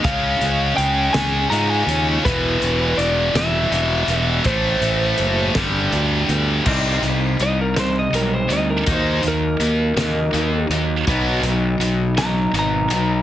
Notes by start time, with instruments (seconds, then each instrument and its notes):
0.04 fingered electric bass C#2, clean electric guitar C#3, distorted electric guitar G#3 C#4, lead electric guitar F5, kick, closed hi-hat
0.41 fingered electric bass C#2, clean electric guitar G#3, closed hi-hat
0.77 fingered electric bass C#2, clean electric guitar C#3, lead electric guitar G5, closed hi-hat
1.13 fingered electric bass C#2, clean electric guitar G#3, lead electric guitar G#5, snare, closed hi-hat
1.50 fingered electric bass G#2, distorted electric guitar C#3 G#3, clean electric guitar F4, lead electric guitar A#5, closed hi-hat
1.54 distorted electric guitar C#4
1.70 lead electric guitar G#5
1.86 fingered electric bass D#2, clean electric guitar C#4, closed hi-hat
2.24 fingered electric bass E1, distorted electric guitar E2 B2, clean electric guitar E3, lead electric guitar B4, kick, closed hi-hat
2.62 fingered electric bass E1, clean electric guitar G3, closed hi-hat
2.98 fingered electric bass E1, clean electric guitar E3, lead electric guitar D5, closed hi-hat
3.34 fingered electric bass E1, clean electric guitar G3, lead electric guitar E5, snare, closed hi-hat
3.71 fingered electric bass E1, distorted electric guitar E2 B2 E3, clean electric guitar E4, closed hi-hat
4.08 fingered electric bass E1, clean electric guitar B3, closed hi-hat
4.44 fingered electric bass A1, clean electric guitar A2, distorted electric guitar E3 A3, lead electric guitar C5, kick, closed hi-hat
4.81 fingered electric bass A1, clean electric guitar A3, closed hi-hat
5.18 fingered electric bass F#1, clean electric guitar E3, closed hi-hat
5.55 fingered electric bass G1, clean electric guitar G2, distorted electric guitar D3 G3, kick, snare, closed hi-hat
5.92 fingered electric bass D2, clean electric guitar D4, closed hi-hat
6.28 fingered electric bass D2, clean electric guitar B3, closed hi-hat
6.65 fingered electric bass C2, clean electric guitar C3 G3 C4 D#4, kick, crash
7.02 fingered electric bass C2, distorted electric guitar C3, clean electric guitar G3 C4 D#4, closed hi-hat
7.39 fingered electric bass C2, distorted electric guitar C3 G3, lead electric guitar D#5, closed hi-hat
7.61 lead electric guitar A#4
7.76 distorted electric guitar C3, clean electric guitar G3 C4 D#4, lead electric guitar C5, snare, closed hi-hat
7.99 lead electric guitar D#5
8.12 fingered electric bass B1, distorted electric guitar C3, clean electric guitar G3 C4 D#4, lead electric guitar A#4, closed hi-hat
8.34 lead electric guitar C5
8.49 fingered electric bass D2, distorted electric guitar C3, clean electric guitar C4 D#4, lead electric guitar D#5, closed hi-hat
8.53 clean electric guitar G3
8.70 lead electric guitar A#4
8.86 fingered electric bass D#2, clean electric guitar D#3 F#3 A#3 D#4, kick, closed hi-hat
8.92 lead electric guitar C5
9.23 fingered electric bass D#2, distorted electric guitar D#3, clean electric guitar F#3 A#3 D#4, closed hi-hat
9.28 lead electric guitar A#4
9.59 fingered electric bass D#2, distorted electric guitar D#3 A#3, closed hi-hat
9.96 fingered electric bass D#2, clean electric guitar D#3 F#3 A#3 D#4, snare, closed hi-hat
10.32 fingered electric bass D#2, clean electric guitar D#3 F#3 A#3 D#4, closed hi-hat
10.69 fingered electric bass D#2, distorted electric guitar D#3, clean electric guitar F#3 A#3 D#4, closed hi-hat
11.06 fingered electric bass B1, clean electric guitar B2 F#3 B3 D#4, kick, closed hi-hat
11.42 fingered electric bass B1, distorted electric guitar B2, clean electric guitar F#3 B3 D#4, closed hi-hat
11.79 fingered electric bass B1, distorted electric guitar B2 F#3, closed hi-hat
12.16 clean electric guitar B2 F#3 B3 D#4, lead electric guitar A#5, snare, closed hi-hat
12.53 fingered electric bass G#1, clean electric guitar B2 F#3 B3 D#4, closed hi-hat
12.59 lead electric guitar A#5
12.89 fingered electric bass B1, distorted electric guitar B2, clean electric guitar F#3 B3 D#4, closed hi-hat